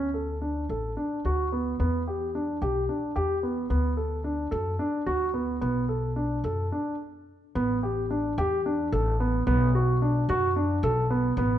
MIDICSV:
0, 0, Header, 1, 3, 480
1, 0, Start_track
1, 0, Key_signature, 2, "minor"
1, 0, Tempo, 549451
1, 1570, Time_signature, 7, 3, 24, 8
1, 7560, Tempo, 542986
1, 10151, End_track
2, 0, Start_track
2, 0, Title_t, "Grand piano"
2, 0, Program_c, 0, 0
2, 122, Note_on_c, 0, 69, 60
2, 313, Note_off_c, 0, 69, 0
2, 364, Note_on_c, 0, 62, 57
2, 554, Note_off_c, 0, 62, 0
2, 611, Note_on_c, 0, 69, 64
2, 800, Note_off_c, 0, 69, 0
2, 846, Note_on_c, 0, 62, 63
2, 1036, Note_off_c, 0, 62, 0
2, 1096, Note_on_c, 0, 66, 75
2, 1282, Note_off_c, 0, 66, 0
2, 1331, Note_on_c, 0, 59, 64
2, 1519, Note_off_c, 0, 59, 0
2, 1570, Note_on_c, 0, 59, 74
2, 1758, Note_off_c, 0, 59, 0
2, 1814, Note_on_c, 0, 67, 58
2, 1999, Note_off_c, 0, 67, 0
2, 2053, Note_on_c, 0, 62, 65
2, 2238, Note_off_c, 0, 62, 0
2, 2287, Note_on_c, 0, 67, 69
2, 2473, Note_off_c, 0, 67, 0
2, 2525, Note_on_c, 0, 62, 60
2, 2711, Note_off_c, 0, 62, 0
2, 2758, Note_on_c, 0, 67, 76
2, 2947, Note_off_c, 0, 67, 0
2, 2997, Note_on_c, 0, 59, 62
2, 3186, Note_off_c, 0, 59, 0
2, 3233, Note_on_c, 0, 59, 72
2, 3422, Note_off_c, 0, 59, 0
2, 3468, Note_on_c, 0, 69, 57
2, 3658, Note_off_c, 0, 69, 0
2, 3706, Note_on_c, 0, 62, 62
2, 3896, Note_off_c, 0, 62, 0
2, 3942, Note_on_c, 0, 69, 74
2, 4133, Note_off_c, 0, 69, 0
2, 4187, Note_on_c, 0, 62, 72
2, 4375, Note_off_c, 0, 62, 0
2, 4425, Note_on_c, 0, 66, 79
2, 4614, Note_off_c, 0, 66, 0
2, 4663, Note_on_c, 0, 59, 65
2, 4853, Note_off_c, 0, 59, 0
2, 4904, Note_on_c, 0, 59, 75
2, 5094, Note_off_c, 0, 59, 0
2, 5143, Note_on_c, 0, 69, 62
2, 5334, Note_off_c, 0, 69, 0
2, 5383, Note_on_c, 0, 62, 64
2, 5575, Note_off_c, 0, 62, 0
2, 5628, Note_on_c, 0, 69, 66
2, 5820, Note_off_c, 0, 69, 0
2, 5873, Note_on_c, 0, 62, 62
2, 6064, Note_off_c, 0, 62, 0
2, 6599, Note_on_c, 0, 59, 77
2, 6789, Note_off_c, 0, 59, 0
2, 6841, Note_on_c, 0, 67, 60
2, 7030, Note_off_c, 0, 67, 0
2, 7081, Note_on_c, 0, 62, 69
2, 7270, Note_off_c, 0, 62, 0
2, 7323, Note_on_c, 0, 67, 77
2, 7511, Note_off_c, 0, 67, 0
2, 7564, Note_on_c, 0, 62, 66
2, 7753, Note_off_c, 0, 62, 0
2, 7800, Note_on_c, 0, 69, 78
2, 7990, Note_off_c, 0, 69, 0
2, 8044, Note_on_c, 0, 59, 72
2, 8233, Note_off_c, 0, 59, 0
2, 8281, Note_on_c, 0, 59, 87
2, 8470, Note_off_c, 0, 59, 0
2, 8528, Note_on_c, 0, 66, 69
2, 8714, Note_off_c, 0, 66, 0
2, 8768, Note_on_c, 0, 62, 69
2, 8955, Note_off_c, 0, 62, 0
2, 9012, Note_on_c, 0, 66, 82
2, 9197, Note_off_c, 0, 66, 0
2, 9248, Note_on_c, 0, 62, 72
2, 9434, Note_off_c, 0, 62, 0
2, 9489, Note_on_c, 0, 69, 88
2, 9674, Note_off_c, 0, 69, 0
2, 9727, Note_on_c, 0, 59, 78
2, 9913, Note_off_c, 0, 59, 0
2, 9969, Note_on_c, 0, 59, 86
2, 10151, Note_off_c, 0, 59, 0
2, 10151, End_track
3, 0, Start_track
3, 0, Title_t, "Upright bass"
3, 0, Program_c, 1, 32
3, 0, Note_on_c, 1, 38, 69
3, 571, Note_off_c, 1, 38, 0
3, 606, Note_on_c, 1, 33, 70
3, 826, Note_off_c, 1, 33, 0
3, 1089, Note_on_c, 1, 38, 71
3, 1534, Note_off_c, 1, 38, 0
3, 1569, Note_on_c, 1, 40, 74
3, 2250, Note_off_c, 1, 40, 0
3, 2285, Note_on_c, 1, 35, 73
3, 2501, Note_off_c, 1, 35, 0
3, 2761, Note_on_c, 1, 40, 68
3, 3203, Note_off_c, 1, 40, 0
3, 3233, Note_on_c, 1, 38, 75
3, 3915, Note_off_c, 1, 38, 0
3, 3947, Note_on_c, 1, 42, 83
3, 4166, Note_off_c, 1, 42, 0
3, 4424, Note_on_c, 1, 38, 66
3, 4870, Note_off_c, 1, 38, 0
3, 4906, Note_on_c, 1, 35, 79
3, 5595, Note_off_c, 1, 35, 0
3, 5623, Note_on_c, 1, 42, 76
3, 5847, Note_off_c, 1, 42, 0
3, 6599, Note_on_c, 1, 33, 75
3, 7287, Note_off_c, 1, 33, 0
3, 7318, Note_on_c, 1, 40, 87
3, 7766, Note_off_c, 1, 40, 0
3, 7799, Note_on_c, 1, 33, 90
3, 8246, Note_off_c, 1, 33, 0
3, 8279, Note_on_c, 1, 35, 83
3, 8966, Note_off_c, 1, 35, 0
3, 9004, Note_on_c, 1, 42, 86
3, 9447, Note_off_c, 1, 42, 0
3, 9483, Note_on_c, 1, 35, 92
3, 9927, Note_off_c, 1, 35, 0
3, 9960, Note_on_c, 1, 33, 89
3, 10151, Note_off_c, 1, 33, 0
3, 10151, End_track
0, 0, End_of_file